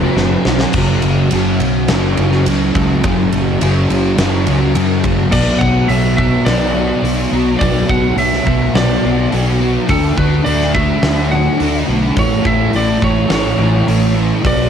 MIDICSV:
0, 0, Header, 1, 6, 480
1, 0, Start_track
1, 0, Key_signature, 2, "minor"
1, 0, Tempo, 570885
1, 626, Time_signature, 4, 2, 24, 8
1, 12356, End_track
2, 0, Start_track
2, 0, Title_t, "Lead electric guitar"
2, 0, Program_c, 0, 29
2, 0, Note_on_c, 0, 71, 87
2, 339, Note_off_c, 0, 71, 0
2, 4474, Note_on_c, 0, 74, 93
2, 4697, Note_on_c, 0, 78, 88
2, 4723, Note_off_c, 0, 74, 0
2, 4947, Note_on_c, 0, 76, 90
2, 4955, Note_off_c, 0, 78, 0
2, 5178, Note_off_c, 0, 76, 0
2, 5188, Note_on_c, 0, 76, 88
2, 5420, Note_off_c, 0, 76, 0
2, 5423, Note_on_c, 0, 74, 71
2, 6118, Note_off_c, 0, 74, 0
2, 6380, Note_on_c, 0, 74, 94
2, 6638, Note_off_c, 0, 74, 0
2, 6643, Note_on_c, 0, 78, 94
2, 6881, Note_on_c, 0, 76, 91
2, 6888, Note_off_c, 0, 78, 0
2, 7360, Note_off_c, 0, 76, 0
2, 7363, Note_on_c, 0, 74, 74
2, 8047, Note_off_c, 0, 74, 0
2, 8326, Note_on_c, 0, 69, 82
2, 8550, Note_off_c, 0, 69, 0
2, 8553, Note_on_c, 0, 71, 80
2, 8781, Note_on_c, 0, 74, 86
2, 8802, Note_off_c, 0, 71, 0
2, 9030, Note_off_c, 0, 74, 0
2, 9034, Note_on_c, 0, 76, 102
2, 9513, Note_on_c, 0, 78, 83
2, 9528, Note_off_c, 0, 76, 0
2, 9959, Note_off_c, 0, 78, 0
2, 10248, Note_on_c, 0, 73, 94
2, 10478, Note_off_c, 0, 73, 0
2, 10481, Note_on_c, 0, 76, 93
2, 10723, Note_off_c, 0, 76, 0
2, 10728, Note_on_c, 0, 74, 93
2, 10962, Note_off_c, 0, 74, 0
2, 10966, Note_on_c, 0, 73, 87
2, 11204, Note_off_c, 0, 73, 0
2, 11214, Note_on_c, 0, 73, 73
2, 11885, Note_off_c, 0, 73, 0
2, 12163, Note_on_c, 0, 74, 97
2, 12356, Note_off_c, 0, 74, 0
2, 12356, End_track
3, 0, Start_track
3, 0, Title_t, "Distorted electric guitar"
3, 0, Program_c, 1, 30
3, 0, Note_on_c, 1, 42, 75
3, 29, Note_on_c, 1, 54, 73
3, 44, Note_on_c, 1, 49, 64
3, 138, Note_off_c, 1, 42, 0
3, 148, Note_on_c, 1, 42, 90
3, 153, Note_off_c, 1, 49, 0
3, 155, Note_off_c, 1, 54, 0
3, 163, Note_on_c, 1, 49, 90
3, 165, Note_on_c, 1, 54, 96
3, 381, Note_off_c, 1, 42, 0
3, 391, Note_on_c, 1, 42, 77
3, 400, Note_off_c, 1, 49, 0
3, 408, Note_off_c, 1, 54, 0
3, 410, Note_on_c, 1, 49, 70
3, 418, Note_on_c, 1, 54, 75
3, 500, Note_off_c, 1, 54, 0
3, 505, Note_off_c, 1, 49, 0
3, 614, Note_off_c, 1, 42, 0
3, 626, Note_on_c, 1, 42, 80
3, 641, Note_on_c, 1, 49, 95
3, 648, Note_on_c, 1, 54, 102
3, 1096, Note_off_c, 1, 42, 0
3, 1100, Note_on_c, 1, 42, 72
3, 1103, Note_off_c, 1, 49, 0
3, 1113, Note_on_c, 1, 49, 73
3, 1119, Note_off_c, 1, 54, 0
3, 1122, Note_on_c, 1, 54, 81
3, 1575, Note_off_c, 1, 42, 0
3, 1585, Note_on_c, 1, 42, 89
3, 1586, Note_off_c, 1, 49, 0
3, 1596, Note_on_c, 1, 49, 91
3, 1606, Note_off_c, 1, 54, 0
3, 1609, Note_on_c, 1, 54, 90
3, 1815, Note_off_c, 1, 54, 0
3, 1818, Note_on_c, 1, 54, 70
3, 1827, Note_off_c, 1, 49, 0
3, 1837, Note_on_c, 1, 49, 61
3, 2056, Note_off_c, 1, 42, 0
3, 2066, Note_on_c, 1, 42, 75
3, 2068, Note_off_c, 1, 49, 0
3, 2078, Note_on_c, 1, 49, 82
3, 2085, Note_off_c, 1, 54, 0
3, 2089, Note_on_c, 1, 54, 89
3, 2536, Note_off_c, 1, 42, 0
3, 2546, Note_on_c, 1, 42, 88
3, 2553, Note_off_c, 1, 49, 0
3, 2556, Note_off_c, 1, 54, 0
3, 2563, Note_on_c, 1, 49, 97
3, 2566, Note_on_c, 1, 54, 105
3, 3023, Note_off_c, 1, 42, 0
3, 3030, Note_off_c, 1, 49, 0
3, 3033, Note_on_c, 1, 42, 79
3, 3039, Note_off_c, 1, 54, 0
3, 3040, Note_on_c, 1, 49, 83
3, 3049, Note_on_c, 1, 54, 88
3, 3500, Note_off_c, 1, 42, 0
3, 3511, Note_on_c, 1, 42, 89
3, 3517, Note_off_c, 1, 49, 0
3, 3525, Note_off_c, 1, 54, 0
3, 3528, Note_on_c, 1, 49, 85
3, 3535, Note_on_c, 1, 54, 99
3, 3741, Note_off_c, 1, 54, 0
3, 3751, Note_on_c, 1, 54, 73
3, 3764, Note_off_c, 1, 49, 0
3, 3774, Note_on_c, 1, 49, 58
3, 3975, Note_off_c, 1, 42, 0
3, 3985, Note_on_c, 1, 42, 69
3, 3990, Note_off_c, 1, 49, 0
3, 3997, Note_off_c, 1, 54, 0
3, 4000, Note_on_c, 1, 49, 70
3, 4007, Note_on_c, 1, 54, 77
3, 4456, Note_off_c, 1, 49, 0
3, 4457, Note_off_c, 1, 42, 0
3, 4460, Note_off_c, 1, 54, 0
3, 4460, Note_on_c, 1, 47, 86
3, 4470, Note_on_c, 1, 54, 88
3, 4485, Note_on_c, 1, 59, 99
3, 4698, Note_off_c, 1, 59, 0
3, 4701, Note_on_c, 1, 59, 70
3, 4723, Note_off_c, 1, 54, 0
3, 4726, Note_on_c, 1, 54, 53
3, 4941, Note_off_c, 1, 47, 0
3, 4944, Note_on_c, 1, 47, 69
3, 4945, Note_off_c, 1, 54, 0
3, 4948, Note_on_c, 1, 54, 75
3, 4956, Note_off_c, 1, 59, 0
3, 4960, Note_on_c, 1, 59, 76
3, 5179, Note_off_c, 1, 59, 0
3, 5182, Note_on_c, 1, 59, 70
3, 5201, Note_off_c, 1, 54, 0
3, 5204, Note_on_c, 1, 54, 53
3, 5418, Note_off_c, 1, 47, 0
3, 5421, Note_on_c, 1, 47, 91
3, 5428, Note_off_c, 1, 54, 0
3, 5431, Note_on_c, 1, 54, 87
3, 5434, Note_off_c, 1, 59, 0
3, 5444, Note_on_c, 1, 59, 96
3, 5654, Note_off_c, 1, 59, 0
3, 5664, Note_on_c, 1, 59, 80
3, 5688, Note_off_c, 1, 54, 0
3, 5691, Note_on_c, 1, 54, 62
3, 5900, Note_off_c, 1, 47, 0
3, 5910, Note_on_c, 1, 47, 72
3, 5918, Note_off_c, 1, 54, 0
3, 5922, Note_on_c, 1, 54, 75
3, 5923, Note_off_c, 1, 59, 0
3, 5933, Note_on_c, 1, 59, 73
3, 6140, Note_off_c, 1, 59, 0
3, 6150, Note_on_c, 1, 59, 68
3, 6163, Note_off_c, 1, 54, 0
3, 6167, Note_on_c, 1, 54, 57
3, 6378, Note_off_c, 1, 47, 0
3, 6388, Note_on_c, 1, 47, 92
3, 6398, Note_off_c, 1, 54, 0
3, 6400, Note_off_c, 1, 59, 0
3, 6401, Note_on_c, 1, 54, 90
3, 6410, Note_on_c, 1, 59, 89
3, 6620, Note_off_c, 1, 59, 0
3, 6630, Note_on_c, 1, 59, 66
3, 6649, Note_off_c, 1, 54, 0
3, 6653, Note_on_c, 1, 54, 60
3, 6852, Note_off_c, 1, 47, 0
3, 6862, Note_on_c, 1, 47, 77
3, 6873, Note_off_c, 1, 54, 0
3, 6873, Note_off_c, 1, 59, 0
3, 6876, Note_on_c, 1, 54, 77
3, 6883, Note_on_c, 1, 59, 80
3, 7100, Note_off_c, 1, 59, 0
3, 7110, Note_on_c, 1, 59, 71
3, 7133, Note_off_c, 1, 54, 0
3, 7136, Note_on_c, 1, 54, 58
3, 7347, Note_off_c, 1, 47, 0
3, 7354, Note_off_c, 1, 54, 0
3, 7358, Note_on_c, 1, 47, 89
3, 7364, Note_on_c, 1, 54, 93
3, 7369, Note_off_c, 1, 59, 0
3, 7379, Note_on_c, 1, 59, 88
3, 7591, Note_off_c, 1, 59, 0
3, 7601, Note_on_c, 1, 59, 68
3, 7609, Note_off_c, 1, 54, 0
3, 7619, Note_on_c, 1, 54, 59
3, 7825, Note_off_c, 1, 47, 0
3, 7835, Note_on_c, 1, 47, 78
3, 7836, Note_off_c, 1, 54, 0
3, 7845, Note_off_c, 1, 59, 0
3, 7846, Note_on_c, 1, 54, 78
3, 7855, Note_on_c, 1, 59, 81
3, 8060, Note_off_c, 1, 59, 0
3, 8070, Note_on_c, 1, 59, 71
3, 8079, Note_off_c, 1, 54, 0
3, 8089, Note_on_c, 1, 54, 56
3, 8299, Note_off_c, 1, 59, 0
3, 8301, Note_off_c, 1, 47, 0
3, 8304, Note_on_c, 1, 50, 86
3, 8309, Note_off_c, 1, 54, 0
3, 8320, Note_on_c, 1, 57, 95
3, 8325, Note_on_c, 1, 62, 105
3, 8544, Note_off_c, 1, 62, 0
3, 8554, Note_on_c, 1, 62, 66
3, 8568, Note_off_c, 1, 57, 0
3, 8571, Note_on_c, 1, 57, 53
3, 8777, Note_off_c, 1, 50, 0
3, 8787, Note_on_c, 1, 50, 78
3, 8795, Note_off_c, 1, 57, 0
3, 8798, Note_on_c, 1, 57, 79
3, 8804, Note_off_c, 1, 62, 0
3, 8814, Note_on_c, 1, 62, 91
3, 9023, Note_off_c, 1, 62, 0
3, 9033, Note_on_c, 1, 62, 73
3, 9052, Note_off_c, 1, 57, 0
3, 9055, Note_on_c, 1, 57, 67
3, 9263, Note_off_c, 1, 50, 0
3, 9271, Note_off_c, 1, 57, 0
3, 9273, Note_on_c, 1, 50, 92
3, 9281, Note_on_c, 1, 57, 101
3, 9287, Note_off_c, 1, 62, 0
3, 9297, Note_on_c, 1, 62, 96
3, 9514, Note_off_c, 1, 62, 0
3, 9524, Note_on_c, 1, 62, 69
3, 9536, Note_off_c, 1, 57, 0
3, 9546, Note_on_c, 1, 57, 61
3, 9739, Note_off_c, 1, 50, 0
3, 9748, Note_off_c, 1, 57, 0
3, 9749, Note_on_c, 1, 50, 74
3, 9758, Note_on_c, 1, 57, 79
3, 9761, Note_off_c, 1, 62, 0
3, 9771, Note_on_c, 1, 62, 82
3, 9979, Note_off_c, 1, 62, 0
3, 9989, Note_on_c, 1, 62, 70
3, 10000, Note_off_c, 1, 57, 0
3, 10010, Note_on_c, 1, 57, 57
3, 10216, Note_off_c, 1, 50, 0
3, 10216, Note_off_c, 1, 62, 0
3, 10224, Note_on_c, 1, 45, 81
3, 10227, Note_off_c, 1, 57, 0
3, 10234, Note_on_c, 1, 52, 91
3, 10248, Note_on_c, 1, 57, 102
3, 10450, Note_off_c, 1, 57, 0
3, 10460, Note_on_c, 1, 57, 68
3, 10469, Note_off_c, 1, 52, 0
3, 10479, Note_on_c, 1, 52, 59
3, 10685, Note_off_c, 1, 45, 0
3, 10695, Note_on_c, 1, 45, 77
3, 10704, Note_off_c, 1, 52, 0
3, 10713, Note_off_c, 1, 57, 0
3, 10714, Note_on_c, 1, 52, 72
3, 10723, Note_on_c, 1, 57, 89
3, 10922, Note_off_c, 1, 57, 0
3, 10932, Note_on_c, 1, 57, 73
3, 10949, Note_off_c, 1, 52, 0
3, 10959, Note_on_c, 1, 52, 56
3, 11161, Note_off_c, 1, 45, 0
3, 11171, Note_on_c, 1, 45, 86
3, 11173, Note_off_c, 1, 52, 0
3, 11183, Note_on_c, 1, 52, 89
3, 11185, Note_off_c, 1, 57, 0
3, 11195, Note_on_c, 1, 57, 88
3, 11406, Note_off_c, 1, 57, 0
3, 11416, Note_on_c, 1, 57, 69
3, 11430, Note_off_c, 1, 52, 0
3, 11440, Note_on_c, 1, 52, 57
3, 11650, Note_off_c, 1, 45, 0
3, 11660, Note_on_c, 1, 45, 64
3, 11661, Note_off_c, 1, 52, 0
3, 11671, Note_on_c, 1, 52, 66
3, 11672, Note_off_c, 1, 57, 0
3, 11683, Note_on_c, 1, 57, 75
3, 11881, Note_off_c, 1, 57, 0
3, 11891, Note_on_c, 1, 57, 67
3, 11901, Note_off_c, 1, 52, 0
3, 11911, Note_on_c, 1, 52, 55
3, 12119, Note_off_c, 1, 45, 0
3, 12123, Note_on_c, 1, 47, 87
3, 12124, Note_off_c, 1, 57, 0
3, 12129, Note_off_c, 1, 52, 0
3, 12132, Note_on_c, 1, 54, 85
3, 12150, Note_on_c, 1, 59, 91
3, 12356, Note_off_c, 1, 47, 0
3, 12356, Note_off_c, 1, 54, 0
3, 12356, Note_off_c, 1, 59, 0
3, 12356, End_track
4, 0, Start_track
4, 0, Title_t, "Fingered electric bass"
4, 0, Program_c, 2, 33
4, 135, Note_on_c, 2, 30, 85
4, 293, Note_off_c, 2, 30, 0
4, 385, Note_on_c, 2, 35, 85
4, 540, Note_off_c, 2, 35, 0
4, 621, Note_on_c, 2, 30, 83
4, 851, Note_off_c, 2, 30, 0
4, 866, Note_on_c, 2, 30, 85
4, 1094, Note_off_c, 2, 30, 0
4, 1113, Note_on_c, 2, 30, 85
4, 1338, Note_off_c, 2, 30, 0
4, 1349, Note_on_c, 2, 35, 85
4, 1576, Note_off_c, 2, 35, 0
4, 1587, Note_on_c, 2, 30, 96
4, 1816, Note_off_c, 2, 30, 0
4, 1836, Note_on_c, 2, 30, 89
4, 2061, Note_off_c, 2, 30, 0
4, 2072, Note_on_c, 2, 37, 82
4, 2299, Note_off_c, 2, 37, 0
4, 2310, Note_on_c, 2, 37, 89
4, 2538, Note_off_c, 2, 37, 0
4, 2557, Note_on_c, 2, 30, 94
4, 2782, Note_off_c, 2, 30, 0
4, 2799, Note_on_c, 2, 30, 86
4, 3024, Note_off_c, 2, 30, 0
4, 3045, Note_on_c, 2, 30, 86
4, 3267, Note_off_c, 2, 30, 0
4, 3283, Note_on_c, 2, 30, 91
4, 3507, Note_off_c, 2, 30, 0
4, 3515, Note_on_c, 2, 30, 94
4, 3743, Note_off_c, 2, 30, 0
4, 3760, Note_on_c, 2, 37, 87
4, 3986, Note_off_c, 2, 37, 0
4, 3996, Note_on_c, 2, 42, 81
4, 4224, Note_off_c, 2, 42, 0
4, 4240, Note_on_c, 2, 30, 80
4, 4466, Note_off_c, 2, 30, 0
4, 4480, Note_on_c, 2, 35, 81
4, 4665, Note_off_c, 2, 35, 0
4, 4721, Note_on_c, 2, 35, 92
4, 4906, Note_off_c, 2, 35, 0
4, 4948, Note_on_c, 2, 35, 82
4, 5324, Note_off_c, 2, 35, 0
4, 5432, Note_on_c, 2, 35, 89
4, 5807, Note_off_c, 2, 35, 0
4, 5905, Note_on_c, 2, 35, 81
4, 6096, Note_off_c, 2, 35, 0
4, 6158, Note_on_c, 2, 35, 84
4, 6344, Note_off_c, 2, 35, 0
4, 6396, Note_on_c, 2, 35, 95
4, 6583, Note_off_c, 2, 35, 0
4, 6634, Note_on_c, 2, 35, 90
4, 6822, Note_off_c, 2, 35, 0
4, 6863, Note_on_c, 2, 35, 87
4, 7055, Note_off_c, 2, 35, 0
4, 7116, Note_on_c, 2, 35, 88
4, 7303, Note_off_c, 2, 35, 0
4, 7350, Note_on_c, 2, 35, 93
4, 7539, Note_off_c, 2, 35, 0
4, 7605, Note_on_c, 2, 35, 94
4, 7788, Note_off_c, 2, 35, 0
4, 7845, Note_on_c, 2, 35, 85
4, 8214, Note_off_c, 2, 35, 0
4, 8317, Note_on_c, 2, 38, 88
4, 8503, Note_off_c, 2, 38, 0
4, 8557, Note_on_c, 2, 38, 84
4, 8743, Note_off_c, 2, 38, 0
4, 8799, Note_on_c, 2, 38, 85
4, 9169, Note_off_c, 2, 38, 0
4, 9271, Note_on_c, 2, 38, 93
4, 9643, Note_off_c, 2, 38, 0
4, 9756, Note_on_c, 2, 38, 87
4, 9941, Note_off_c, 2, 38, 0
4, 9992, Note_on_c, 2, 35, 84
4, 10178, Note_off_c, 2, 35, 0
4, 10227, Note_on_c, 2, 33, 90
4, 10415, Note_off_c, 2, 33, 0
4, 10469, Note_on_c, 2, 33, 89
4, 10655, Note_off_c, 2, 33, 0
4, 10714, Note_on_c, 2, 33, 83
4, 10898, Note_off_c, 2, 33, 0
4, 10948, Note_on_c, 2, 33, 81
4, 11134, Note_off_c, 2, 33, 0
4, 11187, Note_on_c, 2, 33, 92
4, 11373, Note_off_c, 2, 33, 0
4, 11423, Note_on_c, 2, 33, 83
4, 11610, Note_off_c, 2, 33, 0
4, 11665, Note_on_c, 2, 33, 75
4, 12036, Note_off_c, 2, 33, 0
4, 12143, Note_on_c, 2, 35, 90
4, 12329, Note_off_c, 2, 35, 0
4, 12356, End_track
5, 0, Start_track
5, 0, Title_t, "Muted distorted electric guitar strokes"
5, 510, Note_on_c, 9, 29, 53
5, 594, Note_off_c, 9, 29, 0
5, 12356, End_track
6, 0, Start_track
6, 0, Title_t, "Drums"
6, 141, Note_on_c, 9, 38, 62
6, 225, Note_off_c, 9, 38, 0
6, 381, Note_on_c, 9, 38, 97
6, 465, Note_off_c, 9, 38, 0
6, 497, Note_on_c, 9, 38, 100
6, 581, Note_off_c, 9, 38, 0
6, 614, Note_on_c, 9, 49, 107
6, 622, Note_on_c, 9, 36, 110
6, 698, Note_off_c, 9, 49, 0
6, 706, Note_off_c, 9, 36, 0
6, 859, Note_on_c, 9, 51, 73
6, 943, Note_off_c, 9, 51, 0
6, 1099, Note_on_c, 9, 51, 95
6, 1183, Note_off_c, 9, 51, 0
6, 1346, Note_on_c, 9, 51, 62
6, 1430, Note_off_c, 9, 51, 0
6, 1582, Note_on_c, 9, 51, 87
6, 1585, Note_on_c, 9, 38, 109
6, 1666, Note_off_c, 9, 51, 0
6, 1669, Note_off_c, 9, 38, 0
6, 1827, Note_on_c, 9, 51, 66
6, 1911, Note_off_c, 9, 51, 0
6, 1947, Note_on_c, 9, 38, 31
6, 2031, Note_off_c, 9, 38, 0
6, 2070, Note_on_c, 9, 51, 91
6, 2154, Note_off_c, 9, 51, 0
6, 2311, Note_on_c, 9, 51, 65
6, 2314, Note_on_c, 9, 36, 84
6, 2396, Note_off_c, 9, 51, 0
6, 2398, Note_off_c, 9, 36, 0
6, 2552, Note_on_c, 9, 51, 89
6, 2556, Note_on_c, 9, 36, 105
6, 2636, Note_off_c, 9, 51, 0
6, 2640, Note_off_c, 9, 36, 0
6, 2795, Note_on_c, 9, 51, 68
6, 2879, Note_off_c, 9, 51, 0
6, 3037, Note_on_c, 9, 51, 90
6, 3121, Note_off_c, 9, 51, 0
6, 3280, Note_on_c, 9, 51, 69
6, 3364, Note_off_c, 9, 51, 0
6, 3516, Note_on_c, 9, 51, 97
6, 3519, Note_on_c, 9, 38, 103
6, 3600, Note_off_c, 9, 51, 0
6, 3603, Note_off_c, 9, 38, 0
6, 3755, Note_on_c, 9, 51, 75
6, 3839, Note_off_c, 9, 51, 0
6, 3995, Note_on_c, 9, 51, 88
6, 4079, Note_off_c, 9, 51, 0
6, 4235, Note_on_c, 9, 51, 68
6, 4238, Note_on_c, 9, 36, 77
6, 4319, Note_off_c, 9, 51, 0
6, 4322, Note_off_c, 9, 36, 0
6, 4473, Note_on_c, 9, 49, 104
6, 4479, Note_on_c, 9, 36, 99
6, 4557, Note_off_c, 9, 49, 0
6, 4563, Note_off_c, 9, 36, 0
6, 4718, Note_on_c, 9, 36, 77
6, 4802, Note_off_c, 9, 36, 0
6, 4953, Note_on_c, 9, 46, 52
6, 5037, Note_off_c, 9, 46, 0
6, 5199, Note_on_c, 9, 36, 72
6, 5283, Note_off_c, 9, 36, 0
6, 5433, Note_on_c, 9, 46, 52
6, 5436, Note_on_c, 9, 38, 105
6, 5517, Note_off_c, 9, 46, 0
6, 5520, Note_off_c, 9, 38, 0
6, 5926, Note_on_c, 9, 46, 55
6, 6010, Note_off_c, 9, 46, 0
6, 6398, Note_on_c, 9, 46, 55
6, 6400, Note_on_c, 9, 36, 104
6, 6482, Note_off_c, 9, 46, 0
6, 6484, Note_off_c, 9, 36, 0
6, 6637, Note_on_c, 9, 36, 88
6, 6722, Note_off_c, 9, 36, 0
6, 6875, Note_on_c, 9, 46, 56
6, 6959, Note_off_c, 9, 46, 0
6, 7003, Note_on_c, 9, 38, 35
6, 7087, Note_off_c, 9, 38, 0
6, 7119, Note_on_c, 9, 36, 75
6, 7203, Note_off_c, 9, 36, 0
6, 7358, Note_on_c, 9, 46, 56
6, 7360, Note_on_c, 9, 38, 108
6, 7442, Note_off_c, 9, 46, 0
6, 7444, Note_off_c, 9, 38, 0
6, 7838, Note_on_c, 9, 46, 56
6, 7922, Note_off_c, 9, 46, 0
6, 8312, Note_on_c, 9, 46, 56
6, 8318, Note_on_c, 9, 36, 95
6, 8396, Note_off_c, 9, 46, 0
6, 8402, Note_off_c, 9, 36, 0
6, 8556, Note_on_c, 9, 36, 87
6, 8640, Note_off_c, 9, 36, 0
6, 8795, Note_on_c, 9, 46, 58
6, 8879, Note_off_c, 9, 46, 0
6, 8920, Note_on_c, 9, 38, 31
6, 9004, Note_off_c, 9, 38, 0
6, 9036, Note_on_c, 9, 36, 78
6, 9120, Note_off_c, 9, 36, 0
6, 9272, Note_on_c, 9, 46, 54
6, 9274, Note_on_c, 9, 38, 109
6, 9356, Note_off_c, 9, 46, 0
6, 9358, Note_off_c, 9, 38, 0
6, 9753, Note_on_c, 9, 46, 53
6, 9837, Note_off_c, 9, 46, 0
6, 10228, Note_on_c, 9, 46, 48
6, 10231, Note_on_c, 9, 36, 100
6, 10312, Note_off_c, 9, 46, 0
6, 10315, Note_off_c, 9, 36, 0
6, 10469, Note_on_c, 9, 36, 85
6, 10553, Note_off_c, 9, 36, 0
6, 10705, Note_on_c, 9, 46, 51
6, 10789, Note_off_c, 9, 46, 0
6, 10949, Note_on_c, 9, 36, 72
6, 11033, Note_off_c, 9, 36, 0
6, 11181, Note_on_c, 9, 46, 57
6, 11184, Note_on_c, 9, 38, 112
6, 11265, Note_off_c, 9, 46, 0
6, 11268, Note_off_c, 9, 38, 0
6, 11670, Note_on_c, 9, 46, 57
6, 11754, Note_off_c, 9, 46, 0
6, 12147, Note_on_c, 9, 36, 99
6, 12147, Note_on_c, 9, 46, 53
6, 12231, Note_off_c, 9, 36, 0
6, 12231, Note_off_c, 9, 46, 0
6, 12356, End_track
0, 0, End_of_file